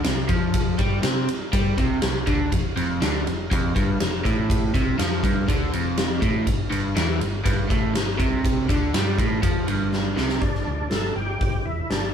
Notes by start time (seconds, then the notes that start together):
0.04 C2 C3, snare, ride
0.29 F2 F3, kick, ride
0.54 kick, ride
0.78 G2 G3, kick, ride
1.03 C3 C4, snare, ride
1.28 muted overdriven electric guitar stroke, muted fingered electric bass stroke, ride
1.53 G2 G3, kick, ride
1.78 C2 C3, kick, ride
2.02 C2 C3, snare, ride
2.27 D2 D3, kick, ride
2.52 F1 F2, kick, ride
2.76 F1 F2, ride
3.01 D2 D3, snare, ride
3.26 F1 F2, ride
3.51 F1 F2, kick, ride
3.75 G1 G2, kick, ride
4.00 F1 F2, snare, ride
4.25 A1 A2, kick, ride
4.50 kick, ride
4.74 C2 C3, kick, ride
4.98 F2 F3, snare, ride
5.23 G1 G2, kick, ride
5.47 D2 D3, kick, ride
5.72 F1 F2, ride
5.97 snare, ride
6.21 A1 A2, kick, ride
6.46 G1 G2, kick, ride
6.70 G1 G2, ride
6.96 E2 E3, snare, ride
7.19 G1 G2, ride
7.45 G1 G2, kick, ride
7.69 A1 A2, kick, ride
7.94 G1 G2, snare, ride
8.18 C2 C3, kick, ride
8.45 kick, ride
8.69 D2 D3, kick, ride
8.94 G2 G3, snare, ride
9.19 A1 A2, kick, ride
9.43 F2 F3, kick, ride
9.67 G1 G2, ride
9.93 snare
10.16 C2 C3, snare
10.29 snare
10.41 G1 D4, kick, open hi-hat
10.55 snare
10.64 D2 D4
10.90 G1 A4, snare, open hi-hat
11.16 G1 G4
11.39 G1 G4, kick, open hi-hat
11.65 E1 E4
11.90 G1 D4, snare, open hi-hat